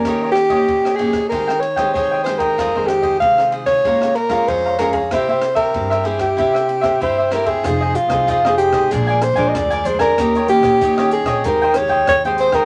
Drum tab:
RD |x-xxx-xxx-xxx-xx|x-xxx-xxx-xxx-xx|x-xxx-xxx-xxx-xx|----------------|
HH |----------------|----------------|----------------|x-xxx-xxx-xxxxxx|
SD |r-r--r-r-r-r--r-|r-r--r-r-r-r--r-|r-r--r-r-r-r--r-|r--r-r-r--r-r--r|
BD |o--oo--oo--oo--o|o--oo--oo--oo--o|o--oo--oo--oo--o|o--oo--oo--oo--o|

RD |----------------|
HH |xxxxx-xxx-x-xxx-|
SD |r--r-r-r--r-r--r|
BD |o--oo--oo--oo--o|